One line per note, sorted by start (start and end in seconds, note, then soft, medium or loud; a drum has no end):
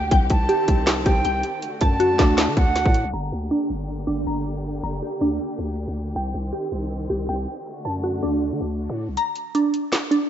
0.00 0.10 D2 loud
0.00 0.12 D4 medium
0.00 0.12 G4 medium
0.00 1.59 G4 medium
0.00 0.11 G5 medium
0.11 0.30 C2 loud
0.11 1.61 D#3 medium
0.11 1.61 C4 medium
0.11 1.24 G5 loud
0.11 kick loud
0.11 closed hi-hat medium
0.30 0.48 C2 loud
0.30 1.02 A5 medium
0.30 kick medium
0.30 closed hi-hat medium
0.49 1.05 G4 medium
0.49 closed hi-hat medium
0.68 1.04 C2 loud
0.68 kick medium
0.68 closed hi-hat medium
0.87 snare loud
0.87 clap loud
0.87 closed hi-hat medium
1.06 1.24 C2 loud
1.06 1.63 G4 medium
1.06 1.59 G5 medium
1.06 kick loud
1.06 closed hi-hat medium
1.25 1.43 C2 loud
1.25 1.63 G5 loud
1.25 closed hi-hat medium
1.43 closed hi-hat medium
1.62 3.12 D3 medium
1.62 3.12 A3 medium
1.62 3.12 F#4 medium
1.62 closed hi-hat medium
1.81 2.18 F#2 loud
1.81 2.94 A5 loud
1.81 2.53 A5 medium
1.81 kick medium
1.81 closed hi-hat medium
2.00 3.13 F#4 medium
2.00 closed hi-hat medium
2.19 2.49 D2 loud
2.19 3.13 D4 medium
2.19 kick medium
2.19 snare medium
2.19 clap medium
2.19 closed hi-hat medium
2.38 snare loud
2.38 clap medium
2.38 closed hi-hat medium
2.48 2.56 D3 loud
2.57 2.84 D2 loud
2.57 3.10 F#5 medium
2.57 kick loud
2.57 closed hi-hat medium
2.76 snare medium
2.76 closed hi-hat medium
2.86 3.06 A2 loud
2.86 kick loud
2.94 closed hi-hat medium
3.05 3.13 C2 loud
3.13 3.31 G1 loud
3.13 6.12 D3 medium
3.13 6.12 A#3 medium
3.13 7.62 G4 medium
3.13 4.26 A#5 loud
3.32 3.50 D2 loud
3.51 4.06 D4 medium
3.70 4.06 G1 loud
4.07 4.26 G1 loud
4.07 5.20 D4 medium
4.26 4.81 G1 loud
4.26 4.82 A#5 loud
4.83 5.01 F#1 loud
4.83 5.97 A#5 loud
5.03 6.15 G4 medium
5.21 5.39 D2 loud
5.21 6.16 D4 medium
5.59 5.86 D2 loud
5.88 6.14 D2 loud
6.15 6.33 C2 loud
6.15 7.65 D#3 medium
6.15 7.65 C4 medium
6.15 7.28 G5 loud
6.34 6.52 C2 loud
6.53 7.09 G4 medium
6.72 7.08 C2 loud
7.10 7.28 C2 loud
7.10 7.66 G4 medium
7.29 7.47 C2 loud
7.29 7.66 G5 loud
7.66 9.16 D3 medium
7.66 9.16 A3 medium
7.66 9.16 F#4 medium
7.85 8.21 F#2 loud
7.85 8.98 A5 loud
8.04 9.17 F#4 medium
8.23 8.53 D2 loud
8.23 9.17 D4 medium
8.52 8.60 D3 loud
8.61 8.88 D2 loud
8.89 9.10 A2 loud
9.08 9.17 C2 loud
9.17 10.29 A#5 loud
9.17 closed hi-hat medium
9.36 closed hi-hat medium
9.55 10.10 D4 medium
9.55 closed hi-hat medium
9.74 closed hi-hat medium
9.92 snare loud
9.92 clap loud
9.92 closed hi-hat medium
10.11 10.29 D4 medium
10.11 closed hi-hat medium